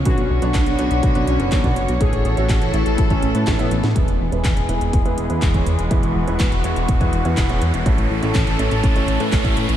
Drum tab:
HH |xx-xxxxxxxxxxxxx|xxxxxxxxxxxxxxxx|xx-xxxxxxxxxxxxx|xx-xxxxxxxxxxxxx|
CP |----x-------x---|----x-------x---|----x-------x---|----x-------x---|
SD |----------------|------------o--o|----------------|----------------|
BD |o---o---o---oo--|o---o---oo--o---|o---o---o---oo--|o---o---oo--o---|

HH |xx-xxxxxxxxxxxxx|
CP |----x-------x---|
SD |----------------|
BD |o---o---o---oo--|